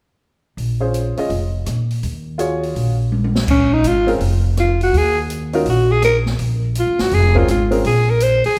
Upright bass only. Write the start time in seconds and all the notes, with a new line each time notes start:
0.57 A#1
1.17 muted upright bass stroke
1.29 F1
1.66 A#2
2.03 D#2
2.75 A#1
3.48 A#1
3.83 G#1
4.19 F1
4.93 D#2
5.66 A#1
6.39 A#1
6.87 C#2
7.00 G#1
7.12 F1
7.48 G#1
7.84 A#1
8.44 F2